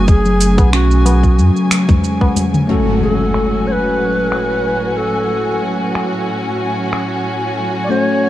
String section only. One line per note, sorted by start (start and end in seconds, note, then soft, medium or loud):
0.00 2.65 C#3 medium
0.00 2.65 F#3 medium
0.00 2.65 A3 medium
0.00 2.65 G#5 medium
2.69 8.29 A2 medium
2.69 8.29 F#3 medium
2.69 8.29 C#4 medium
2.69 8.29 F#4 medium
2.69 8.29 G#5 medium